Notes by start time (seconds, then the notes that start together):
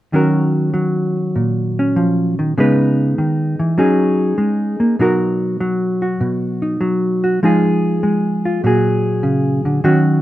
0.13 D#3 F#3 C#4 F#4 A#4
0.74 F#3
1.36 A#2
1.79 C#4
1.96 F3
2.39 D#3
2.58 C#3 G#3 B3 D#4 B4
3.18 D#3
3.59 E3
3.78 F#3 C#4 D#4 G#4
4.38 G#3
4.80 A#3
4.99 B2 F#3 D#4 F#4 A#4
5.60 F#3
6.02 F#4
6.21 B2
6.62 D#4
6.81 F#3
7.24 F#4
7.43 F3 G#3 D#4 F4 G#4
8.03 G#3
8.45 F4
8.64 A#2 F#3 F#4 G#4
9.23 C#3
9.65 D3
9.84 D#3 F#3 C#4 F#4